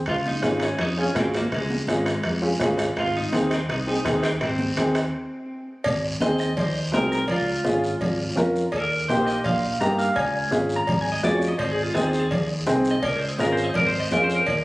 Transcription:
0.06 fingered electric bass C#2, clean electric guitar F4, bombo low, bombo rim, high timbale, long guiro
0.26 clean electric guitar D#4, high conga
0.42 fingered electric bass G#1, upright piano C#4 F4 G#4, bombo rim, high conga, high timbale, short guiro
0.60 bombo rim, high timbale, short guiro
0.64 clean electric guitar C#4
0.78 fingered electric bass F2, clean electric guitar D#4, bombo rim, high timbale, long guiro
0.98 upright piano C#4 F4 G#4, clean electric guitar C#4
1.15 fingered electric bass G#1, clean electric guitar C4, upright piano C#4 F4 G#4, bombo low, bombo rim, high conga, high timbale, low timbale, short guiro
1.34 clean electric guitar A#3, bombo rim, high timbale, short guiro
1.52 fingered electric bass C#2, clean electric guitar G#3, bombo low, bombo rim, high timbale, long guiro
1.70 high conga
1.87 fingered electric bass G#1, upright piano C#4 F4 G#4, bombo rim, high conga, high timbale, short guiro
2.06 bombo rim, high timbale, short guiro
2.23 fingered electric bass F2, bombo rim, high timbale, long guiro
2.42 upright piano C#4 F4 G#4
2.60 fingered electric bass G#1, upright piano C#4 F4 G#4, bombo low, bombo rim, high conga, high timbale, low timbale, short guiro
2.78 bombo rim, high timbale, short guiro
2.96 fingered electric bass G#1, clean electric guitar F4, bombo low, bombo rim, high timbale, long guiro
3.17 clean electric guitar D#4
3.33 fingered electric bass D#2, upright piano C4 D#4 G#4, bombo rim, high conga, high timbale, short guiro
3.51 clean electric guitar C4, bombo rim, high timbale, short guiro
3.69 fingered electric bass C2, clean electric guitar D#4, bombo rim, high timbale, long guiro
3.87 upright piano C4 D#4 G#4, clean electric guitar D#4
4.05 fingered electric bass D#2, upright piano C4 D#4 G#4, bombo low, bombo rim, high conga, high timbale, short guiro
4.23 clean electric guitar C4, bombo rim, high timbale, short guiro
4.41 fingered electric bass G#1, clean electric guitar C4, bombo low, bombo rim, high timbale, long guiro
4.59 high conga
4.77 fingered electric bass D#2, upright piano C4 D#4 G#4, bombo rim, high conga, high timbale, short guiro
4.95 bombo rim, high timbale, short guiro
5.84 fingered electric bass G#1, bombo low, cowbell, high conga, long guiro
6.20 fingered electric bass D#2, upright piano C4 D#4 G#4, clean electric guitar D#5, bombo rim, high conga, short guiro
6.39 clean electric guitar D#5, short guiro
6.57 fingered electric bass D#2, clean electric guitar C5, bombo low, cowbell, high conga, low conga, long guiro
6.92 fingered electric bass C2, upright piano C4 D#4 G#4, clean electric guitar A#4, bombo rim, high conga, low timbale, short guiro
7.12 clean electric guitar A#4, short guiro
7.28 fingered electric bass C#2, clean electric guitar F4, bombo low, cowbell, high conga, low conga, long guiro
7.64 fingered electric bass G#1, upright piano C#4 F4 G#4, bombo rim, high conga, short guiro
7.84 short guiro
8.01 fingered electric bass G#1, bombo low, cowbell, high conga, low conga, long guiro
8.36 fingered electric bass F2, upright piano C#4 F4 A#4, bombo rim, high conga, low conga, short guiro
8.56 short guiro
8.72 fingered electric bass D#2, clean electric guitar A#4, bombo low, cowbell, high conga, long guiro
9.08 fingered electric bass A#1, upright piano A#3 D#4 G4, clean electric guitar C5, bombo rim, high conga, short guiro
9.27 clean electric guitar D#5, short guiro
9.44 fingered electric bass A#1, clean electric guitar F5, bombo low, cowbell, high conga, low conga, long guiro
9.80 fingered electric bass G2, upright piano A#3 D#4 G4, clean electric guitar A#5, bombo rim, high conga, short guiro
9.98 clean electric guitar F5, short guiro
10.16 fingered electric bass C#2, clean electric guitar G#5, bombo low, cowbell, high conga, long guiro
10.51 fingered electric bass G#1, upright piano C#4 F4 G#4, bombo rim, high conga, short guiro
10.69 short guiro
10.76 clean electric guitar A#5
10.87 fingered electric bass G#1, bombo low, cowbell, high conga, low conga, long guiro
11.01 clean electric guitar G#5
11.12 clean electric guitar D#5
11.23 fingered electric bass F2, upright piano C#4 F4 G#4, clean electric guitar D5, bombo rim, high conga, low timbale, short guiro
11.36 clean electric guitar C#5
11.42 short guiro
11.48 clean electric guitar D#5
11.58 fingered electric bass G#1, clean electric guitar C5, bombo low, cowbell, high conga, long guiro
11.71 clean electric guitar G#4
11.82 clean electric guitar F4
11.94 fingered electric bass D#2, upright piano C4 D#4 G#4, clean electric guitar G#4, bombo rim, high conga, short guiro
12.08 clean electric guitar F4
12.13 short guiro
12.19 clean electric guitar G#4
12.31 fingered electric bass D#2, bombo low, cowbell, high conga, low conga, long guiro
12.67 fingered electric bass C2, upright piano C4 D#4 G#4, bombo rim, high conga, short guiro
12.85 short guiro
12.91 clean electric guitar D#5
13.03 fingered electric bass C#2, clean electric guitar A#4, bombo low, cowbell, high conga, long guiro
13.16 clean electric guitar C5
13.28 clean electric guitar D#5
13.38 fingered electric bass G#1, upright piano C#4 F4 G#4, clean electric guitar A#4, bombo rim, high conga, short guiro
13.52 clean electric guitar C5
13.57 short guiro
13.64 clean electric guitar D#5
13.74 fingered electric bass G#1, clean electric guitar A#4, bombo low, cowbell, high conga, low conga, long guiro
13.87 clean electric guitar C5
14.00 clean electric guitar D#5
14.10 fingered electric bass F2, upright piano C#4 F4 G#4, clean electric guitar A#4, bombo rim, high conga, short guiro
14.24 clean electric guitar C5
14.30 short guiro
14.35 clean electric guitar A#4
14.46 fingered electric bass D#2, bombo low, cowbell, high conga, long guiro

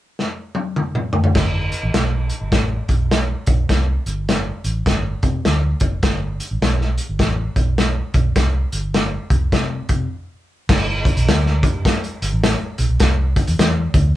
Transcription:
0.19 snare
0.55 high tom
0.76 mid tom
0.95 mid tom
1.13 floor tom
1.24 floor tom
1.35 fingered electric bass G1, kick, snare, crash
1.72 closed hi-hat
1.83 fingered electric bass A1
1.94 fingered electric bass B1, snare, closed hi-hat
2.29 closed hi-hat
2.41 fingered electric bass G1
2.52 fingered electric bass A1, kick, snare, closed hi-hat
2.89 fingered electric bass B1, kick, closed hi-hat
3.11 snare, closed hi-hat
3.46 fingered electric bass B1, kick, closed hi-hat
3.69 fingered electric bass C2, kick, snare, closed hi-hat
4.06 fingered electric bass G1, closed hi-hat
4.29 snare, closed hi-hat
4.64 fingered electric bass A1, closed hi-hat
4.86 fingered electric bass G1, kick, snare, closed hi-hat
5.23 fingered electric bass C3, kick, closed hi-hat
5.45 fingered electric bass D2, snare, closed hi-hat
5.80 fingered electric bass F#1, kick, closed hi-hat
6.03 fingered electric bass G1, kick, snare, closed hi-hat
6.40 closed hi-hat
6.51 fingered electric bass A1
6.61 fingered electric bass B1, snare, closed hi-hat
6.81 snare
6.98 closed hi-hat
7.09 fingered electric bass G1
7.19 fingered electric bass A1, kick, snare, closed hi-hat
7.56 fingered electric bass B1, kick, closed hi-hat
7.78 snare, closed hi-hat
8.14 fingered electric bass B1, kick, closed hi-hat
8.36 fingered electric bass C2, kick, snare, closed hi-hat
8.72 fingered electric bass G1, closed hi-hat
8.94 snare, closed hi-hat
9.30 fingered electric bass C2, kick, closed hi-hat
9.52 fingered electric bass C3, kick, snare, closed hi-hat
9.89 fingered electric bass C3, kick, closed hi-hat
10.69 fingered electric bass G1, kick, snare, crash
11.05 kick, closed hi-hat
11.17 fingered electric bass B1, closed hi-hat
11.27 fingered electric bass D2, snare, closed hi-hat
11.46 snare
11.63 fingered electric bass G2, kick, closed hi-hat
11.85 kick, snare, closed hi-hat
12.04 closed hi-hat
12.22 fingered electric bass G1, closed hi-hat
12.32 fingered electric bass A1
12.44 snare, closed hi-hat
12.78 fingered electric bass B1, closed hi-hat
12.90 fingered electric bass B1
13.00 fingered electric bass C2, kick, snare, closed hi-hat
13.36 kick, closed hi-hat
13.47 fingered electric bass E2, closed hi-hat
13.59 fingered electric bass E2, snare, closed hi-hat
13.94 fingered electric bass D2, kick, closed hi-hat

